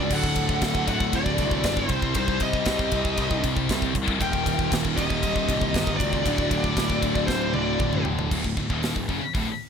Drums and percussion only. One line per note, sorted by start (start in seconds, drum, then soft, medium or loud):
0.11 kick loud
0.11 crash loud
0.23 kick medium
0.35 kick medium
0.35 ride medium
0.49 kick medium
0.62 kick loud
0.62 snare loud
0.62 ride loud
0.75 kick medium
0.88 kick medium
0.88 ride medium
1.00 kick medium
1.13 kick medium
1.13 ride loud
1.26 kick medium
1.38 kick medium
1.38 ride medium
1.51 kick medium
1.64 kick medium
1.64 snare loud
1.64 ride loud
1.77 kick medium
1.89 kick medium
1.89 ride medium
2.02 kick medium
2.15 kick loud
2.15 ride loud
2.28 kick medium
2.40 kick medium
2.40 ride medium
2.53 kick medium
2.65 kick medium
2.65 snare loud
2.65 ride loud
2.79 kick medium
2.92 kick medium
2.92 ride medium
3.05 kick medium
3.17 kick medium
3.17 ride loud
3.31 kick medium
3.44 kick medium
3.44 ride medium
3.57 kick medium
3.69 kick medium
3.69 snare loud
3.69 ride loud
3.82 kick medium
3.95 kick medium
3.95 ride medium
4.08 kick medium
4.21 kick medium
4.21 ride loud
4.33 kick medium
4.46 kick medium
4.46 ride medium
4.59 kick medium
4.72 kick medium
4.72 snare loud
4.72 ride loud
4.85 kick medium
4.98 kick medium
4.98 ride medium
5.10 kick medium
5.23 kick medium
5.23 ride loud
5.36 kick medium
5.49 kick medium
5.49 ride medium
5.61 kick medium
5.74 kick medium
5.74 snare loud
5.74 ride loud
5.87 kick medium
6.00 kick medium
6.00 ride medium
6.13 kick medium
6.26 kick medium
6.26 ride loud
6.38 kick medium
6.51 kick medium
6.51 ride medium
6.64 kick medium
6.77 kick medium
6.77 snare loud
6.77 ride loud
6.90 kick medium
7.03 kick medium
7.03 ride medium
7.15 kick medium
7.28 kick medium
7.28 snare medium
7.54 high tom medium
7.80 kick medium
7.80 mid tom medium
7.93 mid tom medium
8.05 floor tom medium
8.19 floor tom loud
8.31 kick medium
8.31 crash loud
8.44 kick medium
8.57 kick medium
8.70 kick medium
8.83 snare loud
8.83 open hi-hat medium
8.96 kick medium
9.09 kick medium
9.35 kick medium
9.35 open hi-hat soft